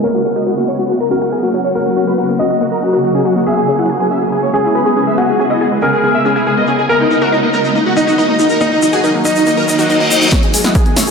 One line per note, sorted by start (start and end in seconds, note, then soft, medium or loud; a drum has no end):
0.04 0.07 A#3 medium
0.04 0.44 A#4 medium
0.04 0.11 C#5 loud
0.04 shaker soft
0.14 0.22 F#4 medium
0.25 0.29 C#4 medium
0.25 0.32 F#4 medium
0.25 shaker medium
0.36 0.45 F#4 loud
0.36 0.43 D#5 medium
0.36 shaker medium
0.46 0.54 F#4 medium
0.46 0.52 A#4 medium
0.46 shaker soft
0.57 0.63 A#3 medium
0.57 0.64 F#4 medium
0.68 0.77 C#4 medium
0.68 0.75 C#5 medium
0.68 shaker medium
0.79 0.86 F#4 medium
0.79 shaker soft
0.89 0.93 A#3 medium
0.89 0.97 F#4 medium
0.89 shaker soft
1.00 1.07 A#4 medium
1.11 1.14 C#4 medium
1.11 1.18 F#4 medium
1.11 1.67 A#4 medium
1.11 shaker medium
1.22 1.30 F#4 loud
1.22 1.29 F#4 medium
1.32 1.39 G#4 medium
1.32 1.38 A#4 medium
1.32 shaker soft
1.43 1.49 A#3 medium
1.43 1.50 F#4 medium
1.53 1.62 C#4 medium
1.53 1.61 F#4 medium
1.53 shaker medium
1.64 1.72 C#5 medium
1.64 shaker soft
1.75 1.79 A#3 medium
1.75 1.82 F#4 medium
1.75 2.31 A#4 medium
1.75 shaker soft
1.86 1.93 F#4 medium
1.96 2.00 C#4 medium
1.96 2.04 F#4 medium
1.96 shaker medium
2.07 2.16 F#4 loud
2.07 2.14 B4 medium
2.07 shaker soft
2.18 2.25 F#4 medium
2.18 2.24 A#4 medium
2.18 shaker soft
2.29 2.34 A#3 medium
2.39 2.48 C#4 medium
2.39 2.47 F#4 medium
2.39 3.38 D#5 medium
2.39 shaker medium
2.50 2.57 F#4 medium
2.50 shaker medium
2.61 2.64 A#3 medium
2.61 2.68 F#4 medium
2.61 shaker soft
2.72 2.79 A#4 medium
2.82 2.86 C#4 medium
2.82 2.89 F#4 medium
2.82 shaker medium
2.93 3.00 F#4 medium
2.93 2.99 A#4 medium
2.93 shaker medium
3.04 3.11 F#4 medium
3.04 3.12 F#4 medium
3.04 shaker soft
3.14 3.20 C#4 medium
3.14 3.22 G#4 medium
3.25 3.32 F#4 medium
3.25 3.34 F#4 loud
3.25 shaker medium
3.36 3.42 A#3 medium
3.36 3.43 F#4 medium
3.36 shaker soft
3.46 3.50 B3 medium
3.46 3.87 G#4 medium
3.46 3.54 E5 loud
3.46 shaker soft
3.57 3.64 G#4 medium
3.68 3.71 C#4 medium
3.68 3.75 G#4 medium
3.68 shaker medium
3.79 3.87 E4 loud
3.79 3.86 F#5 medium
3.79 shaker soft
3.89 3.97 G#4 medium
3.89 3.95 G#4 medium
3.89 shaker soft
4.00 4.06 B3 medium
4.00 4.07 G#4 medium
4.11 4.20 C#4 medium
4.11 4.18 E5 medium
4.11 shaker medium
4.22 4.29 G#4 medium
4.22 shaker medium
4.32 4.36 B3 medium
4.32 4.39 G#4 medium
4.32 shaker soft
4.43 4.50 C#5 medium
4.54 4.57 C#4 medium
4.54 5.09 G#4 medium
4.54 4.61 G#4 medium
4.54 shaker medium
4.64 4.73 E4 loud
4.64 4.72 G#4 medium
4.64 shaker medium
4.75 4.81 G#4 medium
4.75 4.82 B4 medium
4.75 shaker soft
4.86 4.92 B3 medium
4.86 4.93 G#4 medium
4.96 5.05 C#4 medium
4.96 5.04 G#4 medium
4.96 shaker medium
5.07 5.14 E5 medium
5.07 shaker soft
5.17 5.21 B3 medium
5.17 5.74 F#4 medium
5.17 5.25 G#4 medium
5.17 shaker soft
5.29 5.36 G#4 medium
5.39 5.43 C#4 medium
5.39 5.47 G#4 medium
5.39 shaker medium
5.50 5.59 E4 loud
5.50 5.57 D#5 medium
5.50 shaker medium
5.60 5.67 G#4 medium
5.60 5.68 G#4 medium
5.60 shaker soft
5.72 5.77 B3 medium
5.81 5.91 C#4 medium
5.81 5.89 G#4 medium
5.81 6.81 A#4 medium
5.81 shaker medium
5.93 6.00 G#4 medium
5.93 shaker medium
6.03 6.07 B3 medium
6.03 6.11 G#4 medium
6.03 shaker soft
6.14 6.22 E5 medium
6.25 6.29 C#4 medium
6.25 6.32 G#4 medium
6.25 shaker medium
6.36 6.45 E4 loud
6.36 6.43 G#4 medium
6.36 shaker soft
6.46 6.52 G#4 medium
6.46 6.54 G#4 medium
6.46 shaker soft
6.57 6.63 B3 medium
6.57 6.64 D#5 medium
6.67 6.77 C#4 medium
6.67 6.75 G#4 medium
6.67 shaker medium
6.79 6.86 G#4 medium
6.79 shaker soft
6.89 6.93 A#3 medium
6.89 7.30 A#4 loud
6.89 6.97 A#4 loud
6.89 shaker soft
7.00 7.07 D#4 medium
7.11 7.14 D#4 medium
7.11 7.18 D#4 medium
7.11 shaker medium
7.21 7.30 F#4 loud
7.21 7.29 A#4 loud
7.21 shaker soft
7.32 7.39 D#4 medium
7.32 7.38 A#4 medium
7.32 shaker soft
7.43 7.49 A#3 medium
7.43 7.50 D#4 medium
7.53 7.62 D#4 medium
7.53 7.61 A#4 medium
7.53 shaker medium
7.64 7.72 D#4 medium
7.64 shaker soft
7.75 7.79 A#3 medium
7.75 7.82 D#4 medium
7.75 shaker soft
7.86 7.93 F#4 medium
7.96 8.52 D#4 medium
7.96 8.00 D#4 medium
7.96 8.04 D#4 medium
7.96 shaker medium
8.07 8.14 D#4 medium
8.07 8.16 F#4 loud
8.07 shaker soft
8.18 8.25 D#4 loud
8.18 8.24 A#4 medium
8.18 shaker soft
8.29 8.35 A#3 medium
8.29 8.36 D#4 medium
8.39 8.47 D#4 medium
8.39 8.48 D#4 medium
8.39 shaker medium
8.49 8.57 A#4 medium
8.49 shaker soft
8.60 8.64 A#3 medium
8.60 9.17 D#4 medium
8.60 8.68 D#4 medium
8.60 shaker soft
8.72 8.79 D#4 medium
8.82 8.86 D#4 medium
8.82 8.89 D#4 medium
8.82 shaker medium
8.93 9.02 F#4 loud
8.93 9.00 G#4 medium
8.93 shaker soft
9.04 9.11 D#4 medium
9.04 9.10 A#4 medium
9.04 shaker soft
9.14 9.20 A#3 medium
9.25 10.24 D#4 medium
9.25 9.32 D#4 medium
9.25 9.34 D#4 medium
9.25 shaker medium
9.36 9.43 D#4 medium
9.36 shaker soft
9.46 9.50 A#3 medium
9.46 9.54 D#4 medium
9.46 reverse cymbal medium
9.46 shaker soft
9.57 9.64 A#4 medium
9.68 9.71 D#4 medium
9.68 9.75 D#4 medium
9.68 shaker medium
9.79 9.86 D#4 medium
9.79 9.87 F#4 loud
9.79 shaker soft
9.89 9.97 D#4 medium
9.89 9.95 A#4 medium
9.89 shaker soft
10.00 10.06 A#3 medium
10.00 10.07 D#5 loud
10.11 10.20 D#4 medium
10.11 10.18 D#4 medium
10.11 shaker medium
10.22 10.29 D#4 medium
10.22 shaker soft
10.32 10.36 B3 medium
10.32 10.40 C#5 medium
10.32 kick loud
10.32 snare soft
10.32 closed hi-hat medium
10.32 riser medium
10.32 shaker soft
10.43 10.50 G#4 medium
10.43 closed hi-hat soft
10.54 10.60 C#2 medium
10.54 10.57 C#4 medium
10.54 10.61 G#4 medium
10.54 open hi-hat loud
10.54 shaker medium
10.64 10.71 C#2 medium
10.64 10.73 E4 loud
10.64 10.72 D#5 medium
10.64 10.72 F#5 medium
10.64 snare soft
10.64 shaker medium
10.75 10.81 G#4 medium
10.75 10.82 G#4 medium
10.75 kick loud
10.75 closed hi-hat loud
10.75 shaker soft
10.86 10.92 B3 medium
10.86 10.93 G#4 medium
10.86 closed hi-hat soft
10.96 11.03 C#2 medium
10.96 11.05 C#4 medium
10.96 11.04 C#5 medium
10.96 11.04 E5 medium
10.96 snare soft
10.96 open hi-hat loud
10.96 shaker medium
11.07 11.11 C#2 medium
11.07 11.11 G#4 medium
11.07 closed hi-hat soft
11.07 shaker soft